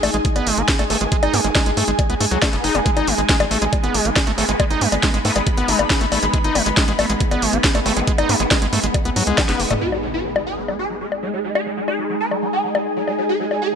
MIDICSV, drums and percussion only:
0, 0, Header, 1, 2, 480
1, 0, Start_track
1, 0, Tempo, 434783
1, 1234, Time_signature, 4, 2, 24, 8
1, 15182, End_track
2, 0, Start_track
2, 0, Title_t, "Drums"
2, 35, Note_on_c, 9, 46, 102
2, 35, Note_on_c, 9, 60, 82
2, 145, Note_off_c, 9, 46, 0
2, 145, Note_off_c, 9, 60, 0
2, 155, Note_on_c, 9, 42, 64
2, 265, Note_off_c, 9, 42, 0
2, 275, Note_on_c, 9, 36, 127
2, 275, Note_on_c, 9, 42, 69
2, 385, Note_off_c, 9, 36, 0
2, 385, Note_off_c, 9, 42, 0
2, 395, Note_on_c, 9, 42, 69
2, 395, Note_on_c, 9, 60, 40
2, 505, Note_off_c, 9, 42, 0
2, 505, Note_off_c, 9, 60, 0
2, 515, Note_on_c, 9, 46, 112
2, 625, Note_off_c, 9, 46, 0
2, 635, Note_on_c, 9, 42, 66
2, 745, Note_off_c, 9, 42, 0
2, 755, Note_on_c, 9, 36, 127
2, 755, Note_on_c, 9, 38, 123
2, 755, Note_on_c, 9, 42, 65
2, 865, Note_off_c, 9, 36, 0
2, 865, Note_off_c, 9, 38, 0
2, 865, Note_off_c, 9, 42, 0
2, 875, Note_on_c, 9, 42, 67
2, 875, Note_on_c, 9, 60, 40
2, 985, Note_off_c, 9, 42, 0
2, 985, Note_off_c, 9, 60, 0
2, 995, Note_on_c, 9, 46, 95
2, 1105, Note_off_c, 9, 46, 0
2, 1115, Note_on_c, 9, 42, 66
2, 1225, Note_off_c, 9, 42, 0
2, 1235, Note_on_c, 9, 36, 120
2, 1235, Note_on_c, 9, 42, 67
2, 1345, Note_off_c, 9, 36, 0
2, 1345, Note_off_c, 9, 42, 0
2, 1355, Note_on_c, 9, 42, 60
2, 1355, Note_on_c, 9, 60, 81
2, 1465, Note_off_c, 9, 42, 0
2, 1465, Note_off_c, 9, 60, 0
2, 1475, Note_on_c, 9, 46, 110
2, 1585, Note_off_c, 9, 46, 0
2, 1595, Note_on_c, 9, 42, 64
2, 1705, Note_off_c, 9, 42, 0
2, 1715, Note_on_c, 9, 36, 123
2, 1715, Note_on_c, 9, 38, 118
2, 1715, Note_on_c, 9, 42, 64
2, 1715, Note_on_c, 9, 60, 42
2, 1825, Note_off_c, 9, 36, 0
2, 1825, Note_off_c, 9, 38, 0
2, 1825, Note_off_c, 9, 42, 0
2, 1825, Note_off_c, 9, 60, 0
2, 1835, Note_on_c, 9, 42, 65
2, 1945, Note_off_c, 9, 42, 0
2, 1955, Note_on_c, 9, 46, 98
2, 2065, Note_off_c, 9, 46, 0
2, 2075, Note_on_c, 9, 42, 66
2, 2185, Note_off_c, 9, 42, 0
2, 2195, Note_on_c, 9, 36, 123
2, 2195, Note_on_c, 9, 42, 66
2, 2195, Note_on_c, 9, 60, 40
2, 2305, Note_off_c, 9, 36, 0
2, 2305, Note_off_c, 9, 42, 0
2, 2305, Note_off_c, 9, 60, 0
2, 2315, Note_on_c, 9, 42, 63
2, 2425, Note_off_c, 9, 42, 0
2, 2435, Note_on_c, 9, 46, 114
2, 2545, Note_off_c, 9, 46, 0
2, 2555, Note_on_c, 9, 42, 63
2, 2665, Note_off_c, 9, 42, 0
2, 2675, Note_on_c, 9, 36, 127
2, 2675, Note_on_c, 9, 38, 119
2, 2675, Note_on_c, 9, 42, 62
2, 2675, Note_on_c, 9, 60, 80
2, 2785, Note_off_c, 9, 36, 0
2, 2785, Note_off_c, 9, 38, 0
2, 2785, Note_off_c, 9, 42, 0
2, 2785, Note_off_c, 9, 60, 0
2, 2795, Note_on_c, 9, 42, 62
2, 2905, Note_off_c, 9, 42, 0
2, 2915, Note_on_c, 9, 46, 96
2, 3025, Note_off_c, 9, 46, 0
2, 3035, Note_on_c, 9, 42, 67
2, 3035, Note_on_c, 9, 60, 41
2, 3145, Note_off_c, 9, 42, 0
2, 3145, Note_off_c, 9, 60, 0
2, 3155, Note_on_c, 9, 36, 118
2, 3155, Note_on_c, 9, 42, 66
2, 3265, Note_off_c, 9, 36, 0
2, 3265, Note_off_c, 9, 42, 0
2, 3275, Note_on_c, 9, 42, 63
2, 3275, Note_on_c, 9, 60, 42
2, 3385, Note_off_c, 9, 42, 0
2, 3385, Note_off_c, 9, 60, 0
2, 3395, Note_on_c, 9, 46, 100
2, 3505, Note_off_c, 9, 46, 0
2, 3515, Note_on_c, 9, 42, 65
2, 3625, Note_off_c, 9, 42, 0
2, 3635, Note_on_c, 9, 36, 118
2, 3635, Note_on_c, 9, 38, 120
2, 3635, Note_on_c, 9, 42, 62
2, 3745, Note_off_c, 9, 36, 0
2, 3745, Note_off_c, 9, 38, 0
2, 3745, Note_off_c, 9, 42, 0
2, 3755, Note_on_c, 9, 42, 65
2, 3755, Note_on_c, 9, 60, 84
2, 3865, Note_off_c, 9, 42, 0
2, 3865, Note_off_c, 9, 60, 0
2, 3875, Note_on_c, 9, 46, 92
2, 3985, Note_off_c, 9, 46, 0
2, 3995, Note_on_c, 9, 42, 68
2, 4105, Note_off_c, 9, 42, 0
2, 4115, Note_on_c, 9, 36, 124
2, 4115, Note_on_c, 9, 42, 63
2, 4115, Note_on_c, 9, 60, 42
2, 4225, Note_off_c, 9, 36, 0
2, 4226, Note_off_c, 9, 42, 0
2, 4226, Note_off_c, 9, 60, 0
2, 4235, Note_on_c, 9, 42, 64
2, 4345, Note_off_c, 9, 42, 0
2, 4355, Note_on_c, 9, 46, 102
2, 4465, Note_off_c, 9, 46, 0
2, 4475, Note_on_c, 9, 42, 66
2, 4585, Note_off_c, 9, 42, 0
2, 4595, Note_on_c, 9, 36, 116
2, 4595, Note_on_c, 9, 38, 114
2, 4595, Note_on_c, 9, 42, 64
2, 4595, Note_on_c, 9, 60, 42
2, 4705, Note_off_c, 9, 36, 0
2, 4705, Note_off_c, 9, 38, 0
2, 4705, Note_off_c, 9, 42, 0
2, 4705, Note_off_c, 9, 60, 0
2, 4715, Note_on_c, 9, 42, 62
2, 4825, Note_off_c, 9, 42, 0
2, 4835, Note_on_c, 9, 46, 92
2, 4945, Note_off_c, 9, 46, 0
2, 4955, Note_on_c, 9, 42, 67
2, 5065, Note_off_c, 9, 42, 0
2, 5075, Note_on_c, 9, 36, 117
2, 5075, Note_on_c, 9, 42, 65
2, 5075, Note_on_c, 9, 60, 84
2, 5185, Note_off_c, 9, 36, 0
2, 5185, Note_off_c, 9, 42, 0
2, 5185, Note_off_c, 9, 60, 0
2, 5195, Note_on_c, 9, 42, 66
2, 5305, Note_off_c, 9, 42, 0
2, 5314, Note_on_c, 9, 46, 100
2, 5425, Note_off_c, 9, 46, 0
2, 5434, Note_on_c, 9, 42, 69
2, 5434, Note_on_c, 9, 60, 42
2, 5545, Note_off_c, 9, 42, 0
2, 5545, Note_off_c, 9, 60, 0
2, 5554, Note_on_c, 9, 38, 110
2, 5554, Note_on_c, 9, 42, 66
2, 5555, Note_on_c, 9, 36, 113
2, 5665, Note_off_c, 9, 36, 0
2, 5665, Note_off_c, 9, 38, 0
2, 5665, Note_off_c, 9, 42, 0
2, 5674, Note_on_c, 9, 42, 69
2, 5785, Note_off_c, 9, 42, 0
2, 5794, Note_on_c, 9, 46, 94
2, 5905, Note_off_c, 9, 46, 0
2, 5914, Note_on_c, 9, 42, 69
2, 5914, Note_on_c, 9, 60, 42
2, 6025, Note_off_c, 9, 42, 0
2, 6025, Note_off_c, 9, 60, 0
2, 6034, Note_on_c, 9, 42, 66
2, 6035, Note_on_c, 9, 36, 114
2, 6145, Note_off_c, 9, 36, 0
2, 6145, Note_off_c, 9, 42, 0
2, 6154, Note_on_c, 9, 42, 67
2, 6265, Note_off_c, 9, 42, 0
2, 6274, Note_on_c, 9, 46, 104
2, 6385, Note_off_c, 9, 46, 0
2, 6394, Note_on_c, 9, 42, 67
2, 6394, Note_on_c, 9, 60, 83
2, 6505, Note_off_c, 9, 42, 0
2, 6505, Note_off_c, 9, 60, 0
2, 6514, Note_on_c, 9, 38, 118
2, 6514, Note_on_c, 9, 42, 64
2, 6515, Note_on_c, 9, 36, 120
2, 6625, Note_off_c, 9, 36, 0
2, 6625, Note_off_c, 9, 38, 0
2, 6625, Note_off_c, 9, 42, 0
2, 6634, Note_on_c, 9, 42, 67
2, 6745, Note_off_c, 9, 42, 0
2, 6754, Note_on_c, 9, 46, 90
2, 6754, Note_on_c, 9, 60, 40
2, 6865, Note_off_c, 9, 46, 0
2, 6865, Note_off_c, 9, 60, 0
2, 6874, Note_on_c, 9, 42, 67
2, 6985, Note_off_c, 9, 42, 0
2, 6994, Note_on_c, 9, 42, 70
2, 6995, Note_on_c, 9, 36, 111
2, 7105, Note_off_c, 9, 36, 0
2, 7105, Note_off_c, 9, 42, 0
2, 7114, Note_on_c, 9, 42, 70
2, 7225, Note_off_c, 9, 42, 0
2, 7235, Note_on_c, 9, 46, 101
2, 7235, Note_on_c, 9, 60, 42
2, 7345, Note_off_c, 9, 46, 0
2, 7345, Note_off_c, 9, 60, 0
2, 7355, Note_on_c, 9, 42, 70
2, 7465, Note_off_c, 9, 42, 0
2, 7474, Note_on_c, 9, 38, 119
2, 7474, Note_on_c, 9, 42, 70
2, 7475, Note_on_c, 9, 36, 114
2, 7585, Note_off_c, 9, 36, 0
2, 7585, Note_off_c, 9, 38, 0
2, 7585, Note_off_c, 9, 42, 0
2, 7595, Note_on_c, 9, 42, 68
2, 7705, Note_off_c, 9, 42, 0
2, 7715, Note_on_c, 9, 46, 89
2, 7715, Note_on_c, 9, 60, 83
2, 7825, Note_off_c, 9, 46, 0
2, 7825, Note_off_c, 9, 60, 0
2, 7835, Note_on_c, 9, 42, 72
2, 7945, Note_off_c, 9, 42, 0
2, 7955, Note_on_c, 9, 36, 114
2, 7955, Note_on_c, 9, 42, 70
2, 8065, Note_off_c, 9, 36, 0
2, 8065, Note_off_c, 9, 42, 0
2, 8075, Note_on_c, 9, 42, 70
2, 8075, Note_on_c, 9, 60, 42
2, 8185, Note_off_c, 9, 42, 0
2, 8185, Note_off_c, 9, 60, 0
2, 8195, Note_on_c, 9, 46, 104
2, 8305, Note_off_c, 9, 46, 0
2, 8315, Note_on_c, 9, 42, 68
2, 8425, Note_off_c, 9, 42, 0
2, 8435, Note_on_c, 9, 36, 115
2, 8435, Note_on_c, 9, 38, 117
2, 8435, Note_on_c, 9, 42, 68
2, 8545, Note_off_c, 9, 36, 0
2, 8545, Note_off_c, 9, 38, 0
2, 8545, Note_off_c, 9, 42, 0
2, 8555, Note_on_c, 9, 42, 69
2, 8555, Note_on_c, 9, 60, 41
2, 8665, Note_off_c, 9, 42, 0
2, 8665, Note_off_c, 9, 60, 0
2, 8675, Note_on_c, 9, 46, 90
2, 8785, Note_off_c, 9, 46, 0
2, 8795, Note_on_c, 9, 42, 73
2, 8905, Note_off_c, 9, 42, 0
2, 8915, Note_on_c, 9, 36, 116
2, 8915, Note_on_c, 9, 42, 72
2, 9025, Note_off_c, 9, 36, 0
2, 9025, Note_off_c, 9, 42, 0
2, 9035, Note_on_c, 9, 42, 71
2, 9035, Note_on_c, 9, 60, 78
2, 9145, Note_off_c, 9, 42, 0
2, 9145, Note_off_c, 9, 60, 0
2, 9155, Note_on_c, 9, 46, 101
2, 9265, Note_off_c, 9, 46, 0
2, 9275, Note_on_c, 9, 42, 72
2, 9385, Note_off_c, 9, 42, 0
2, 9395, Note_on_c, 9, 36, 114
2, 9395, Note_on_c, 9, 38, 121
2, 9395, Note_on_c, 9, 42, 73
2, 9395, Note_on_c, 9, 60, 42
2, 9505, Note_off_c, 9, 36, 0
2, 9505, Note_off_c, 9, 38, 0
2, 9505, Note_off_c, 9, 42, 0
2, 9505, Note_off_c, 9, 60, 0
2, 9515, Note_on_c, 9, 42, 71
2, 9625, Note_off_c, 9, 42, 0
2, 9635, Note_on_c, 9, 46, 91
2, 9745, Note_off_c, 9, 46, 0
2, 9755, Note_on_c, 9, 42, 69
2, 9865, Note_off_c, 9, 42, 0
2, 9875, Note_on_c, 9, 36, 113
2, 9875, Note_on_c, 9, 42, 71
2, 9875, Note_on_c, 9, 60, 40
2, 9985, Note_off_c, 9, 36, 0
2, 9985, Note_off_c, 9, 42, 0
2, 9985, Note_off_c, 9, 60, 0
2, 9995, Note_on_c, 9, 42, 72
2, 10105, Note_off_c, 9, 42, 0
2, 10115, Note_on_c, 9, 46, 105
2, 10225, Note_off_c, 9, 46, 0
2, 10235, Note_on_c, 9, 42, 69
2, 10345, Note_off_c, 9, 42, 0
2, 10355, Note_on_c, 9, 36, 123
2, 10355, Note_on_c, 9, 38, 119
2, 10355, Note_on_c, 9, 42, 70
2, 10355, Note_on_c, 9, 48, 60
2, 10355, Note_on_c, 9, 60, 80
2, 10465, Note_off_c, 9, 36, 0
2, 10465, Note_off_c, 9, 38, 0
2, 10465, Note_off_c, 9, 42, 0
2, 10465, Note_off_c, 9, 48, 0
2, 10465, Note_off_c, 9, 60, 0
2, 10475, Note_on_c, 9, 38, 63
2, 10475, Note_on_c, 9, 42, 72
2, 10585, Note_off_c, 9, 38, 0
2, 10585, Note_off_c, 9, 42, 0
2, 10595, Note_on_c, 9, 46, 87
2, 10705, Note_off_c, 9, 46, 0
2, 10715, Note_on_c, 9, 42, 72
2, 10715, Note_on_c, 9, 45, 85
2, 10715, Note_on_c, 9, 60, 41
2, 10825, Note_off_c, 9, 42, 0
2, 10825, Note_off_c, 9, 45, 0
2, 10825, Note_off_c, 9, 60, 0
2, 10955, Note_on_c, 9, 60, 36
2, 11065, Note_off_c, 9, 60, 0
2, 11435, Note_on_c, 9, 60, 74
2, 11545, Note_off_c, 9, 60, 0
2, 11795, Note_on_c, 9, 60, 39
2, 11905, Note_off_c, 9, 60, 0
2, 12275, Note_on_c, 9, 60, 38
2, 12385, Note_off_c, 9, 60, 0
2, 12755, Note_on_c, 9, 60, 74
2, 12865, Note_off_c, 9, 60, 0
2, 13115, Note_on_c, 9, 60, 39
2, 13225, Note_off_c, 9, 60, 0
2, 13594, Note_on_c, 9, 60, 37
2, 13705, Note_off_c, 9, 60, 0
2, 14075, Note_on_c, 9, 60, 72
2, 14185, Note_off_c, 9, 60, 0
2, 14435, Note_on_c, 9, 60, 36
2, 14545, Note_off_c, 9, 60, 0
2, 14915, Note_on_c, 9, 60, 36
2, 15025, Note_off_c, 9, 60, 0
2, 15182, End_track
0, 0, End_of_file